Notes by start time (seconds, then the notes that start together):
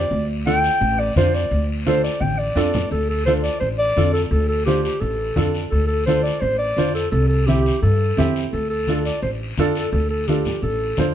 Already playing: D5
0.11 D2, high conga, long guiro
0.46 D4 F4 A4 G5, high conga, short guiro
0.64 short guiro
0.81 A1, high conga, long guiro
0.99 D5
1.16 F2 D4 F4 C5, high conga, short guiro
1.34 D5, short guiro
1.51 D2, high conga, long guiro
1.86 D4 F4 A4 C5, high conga, short guiro
2.03 D5, short guiro
2.21 A1 G5, high conga, long guiro
2.39 D5
2.55 F2 D4 F4 A4, low conga, short guiro
2.74 low conga, short guiro
2.91 D2 A4, high conga, long guiro
3.09 A4
3.26 D4 F4 A4 C5, high conga, short guiro
3.43 D5, short guiro
3.60 A1 C5, high conga, long guiro
3.78 D5
3.96 F2 D4 F4 A4, high conga, short guiro
4.13 A4, short guiro
4.30 D2 A4, high conga, long guiro
4.49 A4
4.66 D4 F4 G4 C5, high conga, short guiro
4.84 G4, short guiro
5.00 A1 A4, high conga, long guiro
5.36 F2 D4 F4 A4, high conga, low conga, short guiro
5.54 short guiro
5.70 D2 A4, high conga, long guiro
5.87 A4
6.06 D4 F4 A4 C5, high conga, short guiro
6.23 D5, short guiro
6.41 A1 C5, high conga, long guiro
6.58 D5
6.77 F2 D4 F4 C5, high conga, short guiro
6.95 A4, short guiro
7.11 C2 A4, high conga, long guiro
7.28 A4
7.46 C4 E4 G4, high conga, short guiro
7.66 short guiro
7.82 G2 A4, high conga, long guiro
8.17 E2 C4 E4 G4, high conga, low conga, short guiro
8.36 short guiro
8.52 D2 A4, high conga, long guiro
8.70 A4
8.87 D4 F4 A4, high conga, short guiro
9.05 D5, short guiro
9.22 A1 C5, high conga, long guiro
9.57 F2 D4 F4 A4, high conga, short guiro
9.75 A4, short guiro
9.92 D2 A4, high conga, long guiro
10.10 A4
10.27 D4 F4 G4 A4, high conga, short guiro
10.45 low conga, short guiro
10.62 A1 A4, high conga, long guiro
10.97 F2 D4 F4 C5, high conga, low conga, short guiro